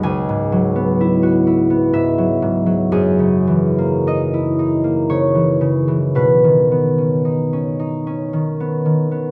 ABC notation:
X:1
M:3/4
L:1/16
Q:1/4=57
K:B
V:1 name="Harp"
[fgb]8 e4 | G4 d4 c4 | B12 |]
V:2 name="Harp"
[C,,G,B,DG] G,, F, B, E F E B, G,, F, G,, F, | F,, C, E, A, D E D A, C, E, C, E, | B,, D, B, C D C D C D, B, D, B, |]